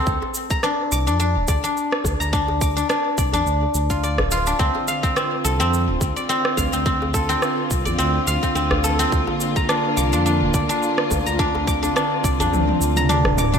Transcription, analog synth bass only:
0.07 0.18 D2 loud
0.92 1.09 C2 medium
1.08 1.38 F2 medium
1.36 1.45 D1 medium
1.48 1.59 D2 medium
2.05 2.16 D2 medium
2.21 2.84 D2 medium
3.18 3.35 C2 medium
3.33 3.42 F2 medium
3.46 3.67 D2 loud
3.75 4.20 D2 loud
4.19 4.53 D1 medium
4.60 4.70 D2 medium
5.45 5.61 C2 medium
5.60 5.90 F2 medium
5.88 5.97 D1 medium
6.01 6.12 D2 medium
6.57 6.68 D2 medium
6.73 7.36 D2 medium
7.71 7.88 C2 medium
7.86 7.95 F2 medium
7.99 8.19 D2 loud
8.27 8.38 D2 loud
8.56 9.06 D2 medium
9.13 9.23 D2 medium
9.98 10.15 C2 medium
10.14 10.43 F2 medium
10.42 10.50 D1 loud
10.54 10.65 D2 medium
11.11 11.21 D2 medium
11.27 11.90 D2 medium
12.24 12.41 C2 medium
12.40 12.48 F2 medium
12.52 12.72 D2 loud
12.81 13.26 D2 loud
13.25 13.59 D1 loud

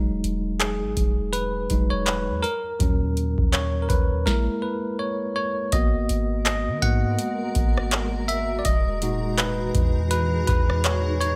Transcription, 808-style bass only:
0.00 0.22 E1 loud
0.24 0.83 E1 loud
0.82 0.96 G#1 medium
0.97 1.67 E1 loud
1.70 2.30 E1 loud
2.28 2.43 E2 medium
2.80 3.35 D#2 loud
3.38 3.88 D#2 loud
3.90 4.25 D#2 loud
5.73 6.08 G#1 loud
6.10 6.69 G#1 loud
6.67 6.82 D#3 loud
6.82 7.17 G#2 loud
7.56 8.61 G#1 loud
8.65 9.71 E1 loud
9.75 10.45 E2 loud
10.48 11.36 E2 loud

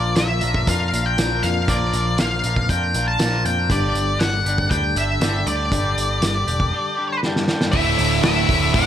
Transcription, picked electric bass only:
0.00 0.15 A#1 medium
0.17 0.40 A#1 medium
0.43 0.65 A#1 medium
0.68 0.90 F2 medium
0.93 1.16 A#1 medium
1.18 1.41 A#1 medium
1.43 1.66 F2 medium
1.68 1.91 A#1 medium
1.94 2.17 A#1 medium
2.19 2.42 A#1 medium
2.44 2.67 A#1 medium
2.69 2.92 F2 medium
2.94 3.18 A#1 medium
3.19 3.43 A#1 medium
3.45 3.68 F2 medium
3.70 3.93 G1 medium
3.94 4.18 G1 medium
4.19 4.43 G1 medium
4.45 4.68 G1 medium
4.71 4.94 D2 medium
4.95 5.19 G1 medium
5.20 5.44 G1 medium
5.45 5.69 D2 medium
5.72 5.95 G1 medium
5.96 6.20 G1 medium
6.22 6.45 G1 medium
6.47 6.70 E1 medium
7.73 7.94 D1 medium
7.99 8.19 D1 medium
8.23 8.44 D1 medium
8.49 8.69 D1 medium
8.74 8.86 D1 loud

